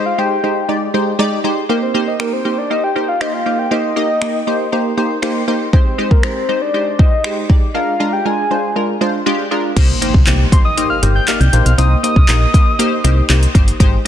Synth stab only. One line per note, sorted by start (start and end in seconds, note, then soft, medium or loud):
0.00 0.13 G#3 medium
0.00 0.13 D#4 medium
0.00 0.13 G4 medium
0.00 0.13 C5 loud
0.18 0.38 G#3 medium
0.18 0.38 D#4 medium
0.18 0.38 G4 medium
0.18 0.38 C5 medium
0.43 0.63 G#3 medium
0.43 0.63 D#4 medium
0.43 0.64 G4 medium
0.43 0.64 C5 medium
0.68 0.88 G#3 medium
0.68 0.89 D#4 medium
0.68 0.89 G4 medium
0.68 0.89 D5 medium
0.94 1.14 G#3 medium
0.94 1.14 D#4 medium
0.94 1.14 G4 medium
0.94 1.14 C5 loud
1.19 1.39 G#3 loud
1.19 1.39 D#4 loud
1.19 1.39 G4 loud
1.19 1.39 D5 loud
1.44 1.64 G#3 medium
1.44 1.64 D#4 medium
1.44 1.64 G4 medium
1.44 1.64 C5 loud
1.69 1.89 A#3 loud
1.69 1.89 D#4 medium
1.69 1.89 G4 medium
1.69 1.90 C5 loud
1.94 2.14 A#3 medium
1.94 2.15 D#4 medium
1.94 2.15 G4 medium
1.94 2.15 C5 loud
2.20 2.40 A#3 medium
2.20 2.40 D#4 medium
2.20 2.40 G4 medium
2.20 2.40 C5 medium
2.45 2.65 A#3 medium
2.45 2.65 D#4 medium
2.45 2.65 G4 medium
2.45 2.65 C5 medium
2.70 2.90 A#3 medium
2.70 2.90 D#4 medium
2.70 2.90 G4 medium
2.70 2.91 C5 medium
2.96 3.15 A#3 medium
2.96 3.16 D#4 medium
2.96 3.16 G4 medium
2.96 3.16 C5 medium
3.21 3.41 A#3 loud
3.21 3.41 D#4 medium
3.21 3.41 G4 medium
3.21 3.41 C5 loud
3.46 3.66 A#3 medium
3.46 3.66 D#4 medium
3.46 3.66 G4 medium
3.46 3.66 C5 medium
3.71 3.91 A#3 medium
3.71 3.91 D#4 medium
3.71 3.91 G4 medium
3.71 3.91 C5 loud
3.96 4.16 A#3 medium
3.96 4.16 D#4 medium
3.96 4.16 G4 medium
3.96 4.16 D#5 loud
4.22 4.42 A#3 medium
4.22 4.42 D#4 medium
4.22 4.42 G4 medium
4.22 4.42 D#5 medium
4.47 4.67 A#3 medium
4.47 4.67 D#4 medium
4.47 4.67 G4 medium
4.47 4.67 C5 loud
4.72 4.92 A#3 medium
4.72 4.92 D#4 medium
4.72 4.92 G4 medium
4.72 4.92 C5 loud
4.97 5.17 A#3 medium
4.97 5.17 D#4 medium
4.97 5.17 G4 medium
4.97 5.17 C5 loud
5.22 5.42 A#3 loud
5.22 5.42 D#4 loud
5.22 5.42 G4 loud
5.22 5.43 C5 loud
5.48 5.68 A#3 medium
5.48 5.68 D#4 medium
5.48 5.68 G4 medium
5.48 5.68 C5 loud
5.73 5.93 G#3 medium
5.73 5.93 D#4 medium
5.73 5.93 G4 medium
5.73 5.93 C5 loud
5.98 6.18 G#3 medium
5.98 6.18 D#4 medium
5.98 6.18 G4 medium
5.98 6.18 C5 loud
6.24 6.43 G#3 medium
6.24 6.43 D#4 medium
6.24 6.43 G4 medium
6.24 6.44 A#4 medium
6.49 6.68 G#3 medium
6.49 6.69 D#4 medium
6.49 6.69 G4 medium
6.49 6.69 C5 medium
6.74 6.94 G#3 medium
6.74 6.94 D#4 medium
6.74 6.94 G4 medium
6.74 6.94 C5 medium
6.99 7.19 G#3 medium
6.99 7.19 D#4 medium
6.99 7.19 G4 medium
6.99 7.19 C5 medium
7.24 7.44 G#3 loud
7.24 7.44 D#4 medium
7.24 7.44 G4 medium
7.24 7.44 C5 loud
7.49 7.69 G#3 medium
7.49 7.69 D#4 medium
7.49 7.69 G4 medium
7.49 7.70 D5 medium
7.74 7.94 G#3 medium
7.74 7.94 D4 medium
7.74 7.95 F4 medium
7.74 7.95 A#4 loud
8.00 8.20 G#3 medium
8.00 8.20 D4 medium
8.00 8.20 F4 medium
8.00 8.20 A#4 loud
8.25 8.45 G#3 medium
8.25 8.45 D4 medium
8.25 8.45 F4 medium
8.25 8.45 A#4 medium
8.51 8.70 G#3 medium
8.51 8.70 D4 medium
8.51 8.70 F4 medium
8.51 8.71 C5 medium
8.76 8.95 G#3 medium
8.76 8.96 D4 medium
8.76 8.96 F4 medium
8.76 8.96 A#4 medium
9.01 9.21 G#3 medium
9.01 9.21 D4 medium
9.01 9.21 F4 medium
9.01 9.21 C5 loud
9.26 9.46 G#3 loud
9.26 9.46 D4 loud
9.26 9.46 F4 loud
9.26 9.46 G4 loud
9.51 9.71 G#3 medium
9.51 9.71 D4 medium
9.51 9.71 F4 medium
9.51 9.71 A#4 loud
9.76 9.96 A#3 loud
9.76 9.96 D#4 loud
9.76 9.96 G4 loud
9.76 9.96 C5 loud
10.02 10.21 A#3 medium
10.02 10.21 D#4 medium
10.02 10.22 G4 medium
10.02 10.22 C5 loud
10.27 10.47 A#3 medium
10.27 10.47 D#4 medium
10.27 10.47 G4 medium
10.27 10.47 C5 loud
10.52 10.72 A#3 medium
10.52 10.72 D#4 medium
10.52 10.72 G4 medium
10.52 10.72 C5 medium
10.77 10.97 A#3 loud
10.77 10.97 D#4 medium
10.77 10.97 G4 medium
10.77 10.97 C5 loud
11.03 11.22 A#3 medium
11.03 11.22 D#4 medium
11.03 11.23 G4 medium
11.03 11.23 C5 medium
11.28 11.48 A#3 medium
11.28 11.48 D#4 medium
11.28 11.48 G4 medium
11.28 11.48 D5 medium
11.53 11.73 A#3 medium
11.53 11.73 D#4 medium
11.53 11.73 G4 medium
11.53 11.73 C5 medium
11.78 11.98 A#3 loud
11.78 11.98 D#4 medium
11.78 11.98 G4 medium
11.78 11.98 C5 loud
12.03 12.23 A#3 medium
12.03 12.23 D#4 medium
12.03 12.23 G4 medium
12.03 12.23 C5 medium
12.28 12.48 A#3 medium
12.28 12.48 D#4 medium
12.28 12.49 G4 medium
12.28 12.49 A#4 medium
12.54 12.73 A#3 medium
12.54 12.74 D#4 medium
12.54 12.74 G4 medium
12.54 12.74 C5 medium
12.79 12.99 A#3 loud
12.79 12.99 D#4 loud
12.79 12.99 G4 loud
12.79 12.99 C5 loud
13.04 13.24 A#3 medium
13.04 13.24 D#4 medium
13.04 13.24 G4 medium
13.04 13.24 C5 loud
13.29 13.49 A#3 medium
13.29 13.49 D#4 medium
13.29 13.49 G4 medium
13.29 13.49 C5 loud
13.54 13.74 A#3 medium
13.54 13.74 D#4 medium
13.54 13.75 G4 medium
13.54 13.75 C5 loud
13.80 14.00 G#3 loud
13.80 14.00 D#4 loud
13.80 14.00 G4 loud
13.80 14.00 C5 loud